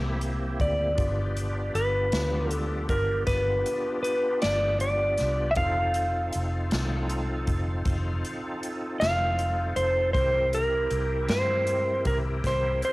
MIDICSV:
0, 0, Header, 1, 5, 480
1, 0, Start_track
1, 0, Tempo, 765306
1, 615, Time_signature, 12, 3, 24, 8
1, 8108, End_track
2, 0, Start_track
2, 0, Title_t, "Electric slide guitar"
2, 0, Program_c, 0, 29
2, 382, Note_on_c, 0, 74, 69
2, 1099, Note_on_c, 0, 71, 77
2, 1120, Note_off_c, 0, 74, 0
2, 1576, Note_off_c, 0, 71, 0
2, 1576, Note_on_c, 0, 69, 77
2, 1791, Note_off_c, 0, 69, 0
2, 1818, Note_on_c, 0, 70, 70
2, 2047, Note_off_c, 0, 70, 0
2, 2049, Note_on_c, 0, 71, 75
2, 2517, Note_off_c, 0, 71, 0
2, 2524, Note_on_c, 0, 71, 73
2, 2752, Note_off_c, 0, 71, 0
2, 2772, Note_on_c, 0, 74, 78
2, 3009, Note_off_c, 0, 74, 0
2, 3016, Note_on_c, 0, 74, 73
2, 3456, Note_on_c, 0, 76, 65
2, 3464, Note_off_c, 0, 74, 0
2, 3491, Note_off_c, 0, 76, 0
2, 3494, Note_on_c, 0, 77, 94
2, 5389, Note_off_c, 0, 77, 0
2, 5644, Note_on_c, 0, 77, 89
2, 6123, Note_on_c, 0, 72, 76
2, 6144, Note_off_c, 0, 77, 0
2, 6348, Note_off_c, 0, 72, 0
2, 6355, Note_on_c, 0, 72, 88
2, 6613, Note_off_c, 0, 72, 0
2, 6614, Note_on_c, 0, 70, 82
2, 7088, Note_on_c, 0, 72, 85
2, 7109, Note_off_c, 0, 70, 0
2, 7569, Note_on_c, 0, 70, 75
2, 7586, Note_off_c, 0, 72, 0
2, 7635, Note_off_c, 0, 70, 0
2, 7819, Note_on_c, 0, 72, 75
2, 8051, Note_off_c, 0, 72, 0
2, 8058, Note_on_c, 0, 72, 84
2, 8108, Note_off_c, 0, 72, 0
2, 8108, End_track
3, 0, Start_track
3, 0, Title_t, "Tonewheel organ"
3, 0, Program_c, 1, 16
3, 0, Note_on_c, 1, 58, 51
3, 0, Note_on_c, 1, 60, 61
3, 0, Note_on_c, 1, 64, 56
3, 0, Note_on_c, 1, 67, 55
3, 581, Note_off_c, 1, 58, 0
3, 582, Note_off_c, 1, 64, 0
3, 582, Note_off_c, 1, 67, 0
3, 584, Note_off_c, 1, 60, 0
3, 596, Note_on_c, 1, 65, 56
3, 597, Note_on_c, 1, 59, 52
3, 597, Note_on_c, 1, 67, 52
3, 598, Note_on_c, 1, 62, 55
3, 3460, Note_off_c, 1, 59, 0
3, 3460, Note_off_c, 1, 65, 0
3, 3460, Note_off_c, 1, 67, 0
3, 3461, Note_off_c, 1, 62, 0
3, 3488, Note_on_c, 1, 63, 59
3, 3489, Note_on_c, 1, 60, 55
3, 3492, Note_on_c, 1, 65, 59
3, 3494, Note_on_c, 1, 69, 53
3, 6347, Note_off_c, 1, 60, 0
3, 6347, Note_off_c, 1, 63, 0
3, 6349, Note_off_c, 1, 65, 0
3, 6350, Note_off_c, 1, 69, 0
3, 6367, Note_on_c, 1, 60, 58
3, 6367, Note_on_c, 1, 64, 62
3, 6369, Note_on_c, 1, 70, 62
3, 6375, Note_on_c, 1, 67, 61
3, 8108, Note_off_c, 1, 60, 0
3, 8108, Note_off_c, 1, 64, 0
3, 8108, Note_off_c, 1, 67, 0
3, 8108, Note_off_c, 1, 70, 0
3, 8108, End_track
4, 0, Start_track
4, 0, Title_t, "Fingered electric bass"
4, 0, Program_c, 2, 33
4, 0, Note_on_c, 2, 36, 82
4, 351, Note_off_c, 2, 36, 0
4, 377, Note_on_c, 2, 38, 69
4, 597, Note_off_c, 2, 38, 0
4, 615, Note_on_c, 2, 31, 77
4, 1070, Note_off_c, 2, 31, 0
4, 1095, Note_on_c, 2, 31, 73
4, 1316, Note_off_c, 2, 31, 0
4, 1333, Note_on_c, 2, 38, 80
4, 1788, Note_off_c, 2, 38, 0
4, 1815, Note_on_c, 2, 31, 66
4, 2035, Note_off_c, 2, 31, 0
4, 2053, Note_on_c, 2, 31, 74
4, 2275, Note_off_c, 2, 31, 0
4, 2786, Note_on_c, 2, 31, 80
4, 3235, Note_off_c, 2, 31, 0
4, 3267, Note_on_c, 2, 36, 73
4, 3482, Note_off_c, 2, 36, 0
4, 3493, Note_on_c, 2, 29, 81
4, 3948, Note_off_c, 2, 29, 0
4, 3987, Note_on_c, 2, 29, 80
4, 4202, Note_off_c, 2, 29, 0
4, 4220, Note_on_c, 2, 36, 87
4, 4672, Note_off_c, 2, 36, 0
4, 4689, Note_on_c, 2, 29, 71
4, 4912, Note_off_c, 2, 29, 0
4, 4931, Note_on_c, 2, 29, 73
4, 5154, Note_off_c, 2, 29, 0
4, 5658, Note_on_c, 2, 29, 90
4, 6111, Note_off_c, 2, 29, 0
4, 6126, Note_on_c, 2, 29, 78
4, 6351, Note_off_c, 2, 29, 0
4, 6363, Note_on_c, 2, 36, 85
4, 6824, Note_off_c, 2, 36, 0
4, 6844, Note_on_c, 2, 36, 79
4, 7070, Note_off_c, 2, 36, 0
4, 7079, Note_on_c, 2, 43, 84
4, 7543, Note_off_c, 2, 43, 0
4, 7564, Note_on_c, 2, 36, 76
4, 7790, Note_off_c, 2, 36, 0
4, 7808, Note_on_c, 2, 36, 80
4, 8033, Note_off_c, 2, 36, 0
4, 8108, End_track
5, 0, Start_track
5, 0, Title_t, "Drums"
5, 133, Note_on_c, 9, 42, 46
5, 195, Note_off_c, 9, 42, 0
5, 375, Note_on_c, 9, 36, 69
5, 375, Note_on_c, 9, 42, 51
5, 438, Note_off_c, 9, 36, 0
5, 438, Note_off_c, 9, 42, 0
5, 613, Note_on_c, 9, 42, 64
5, 615, Note_on_c, 9, 36, 92
5, 676, Note_off_c, 9, 42, 0
5, 678, Note_off_c, 9, 36, 0
5, 856, Note_on_c, 9, 42, 47
5, 919, Note_off_c, 9, 42, 0
5, 1097, Note_on_c, 9, 42, 50
5, 1160, Note_off_c, 9, 42, 0
5, 1330, Note_on_c, 9, 42, 67
5, 1336, Note_on_c, 9, 38, 100
5, 1393, Note_off_c, 9, 42, 0
5, 1399, Note_off_c, 9, 38, 0
5, 1572, Note_on_c, 9, 42, 59
5, 1635, Note_off_c, 9, 42, 0
5, 1812, Note_on_c, 9, 42, 57
5, 1813, Note_on_c, 9, 36, 70
5, 1875, Note_off_c, 9, 42, 0
5, 1876, Note_off_c, 9, 36, 0
5, 2049, Note_on_c, 9, 42, 75
5, 2053, Note_on_c, 9, 36, 71
5, 2056, Note_on_c, 9, 38, 28
5, 2112, Note_off_c, 9, 42, 0
5, 2116, Note_off_c, 9, 36, 0
5, 2118, Note_off_c, 9, 38, 0
5, 2295, Note_on_c, 9, 42, 54
5, 2357, Note_off_c, 9, 42, 0
5, 2535, Note_on_c, 9, 42, 57
5, 2598, Note_off_c, 9, 42, 0
5, 2770, Note_on_c, 9, 42, 79
5, 2776, Note_on_c, 9, 38, 96
5, 2833, Note_off_c, 9, 42, 0
5, 2839, Note_off_c, 9, 38, 0
5, 3011, Note_on_c, 9, 42, 51
5, 3074, Note_off_c, 9, 42, 0
5, 3246, Note_on_c, 9, 42, 59
5, 3252, Note_on_c, 9, 38, 29
5, 3309, Note_off_c, 9, 42, 0
5, 3315, Note_off_c, 9, 38, 0
5, 3483, Note_on_c, 9, 42, 71
5, 3490, Note_on_c, 9, 36, 96
5, 3546, Note_off_c, 9, 42, 0
5, 3553, Note_off_c, 9, 36, 0
5, 3725, Note_on_c, 9, 42, 53
5, 3788, Note_off_c, 9, 42, 0
5, 3967, Note_on_c, 9, 42, 61
5, 4030, Note_off_c, 9, 42, 0
5, 4209, Note_on_c, 9, 42, 67
5, 4216, Note_on_c, 9, 38, 97
5, 4272, Note_off_c, 9, 42, 0
5, 4278, Note_off_c, 9, 38, 0
5, 4449, Note_on_c, 9, 42, 52
5, 4512, Note_off_c, 9, 42, 0
5, 4687, Note_on_c, 9, 42, 59
5, 4689, Note_on_c, 9, 36, 65
5, 4749, Note_off_c, 9, 42, 0
5, 4752, Note_off_c, 9, 36, 0
5, 4926, Note_on_c, 9, 42, 73
5, 4928, Note_on_c, 9, 36, 82
5, 4989, Note_off_c, 9, 42, 0
5, 4990, Note_off_c, 9, 36, 0
5, 5172, Note_on_c, 9, 42, 51
5, 5235, Note_off_c, 9, 42, 0
5, 5413, Note_on_c, 9, 42, 50
5, 5476, Note_off_c, 9, 42, 0
5, 5652, Note_on_c, 9, 42, 68
5, 5659, Note_on_c, 9, 38, 92
5, 5715, Note_off_c, 9, 42, 0
5, 5721, Note_off_c, 9, 38, 0
5, 5888, Note_on_c, 9, 42, 52
5, 5950, Note_off_c, 9, 42, 0
5, 6123, Note_on_c, 9, 42, 53
5, 6186, Note_off_c, 9, 42, 0
5, 6363, Note_on_c, 9, 36, 97
5, 6364, Note_on_c, 9, 42, 70
5, 6426, Note_off_c, 9, 36, 0
5, 6426, Note_off_c, 9, 42, 0
5, 6604, Note_on_c, 9, 42, 59
5, 6667, Note_off_c, 9, 42, 0
5, 6840, Note_on_c, 9, 42, 56
5, 6902, Note_off_c, 9, 42, 0
5, 7078, Note_on_c, 9, 42, 73
5, 7084, Note_on_c, 9, 38, 102
5, 7141, Note_off_c, 9, 42, 0
5, 7147, Note_off_c, 9, 38, 0
5, 7318, Note_on_c, 9, 42, 62
5, 7381, Note_off_c, 9, 42, 0
5, 7558, Note_on_c, 9, 42, 59
5, 7560, Note_on_c, 9, 36, 74
5, 7621, Note_off_c, 9, 42, 0
5, 7623, Note_off_c, 9, 36, 0
5, 7803, Note_on_c, 9, 36, 73
5, 7803, Note_on_c, 9, 42, 77
5, 7809, Note_on_c, 9, 38, 28
5, 7865, Note_off_c, 9, 36, 0
5, 7865, Note_off_c, 9, 42, 0
5, 7872, Note_off_c, 9, 38, 0
5, 8043, Note_on_c, 9, 42, 55
5, 8105, Note_off_c, 9, 42, 0
5, 8108, End_track
0, 0, End_of_file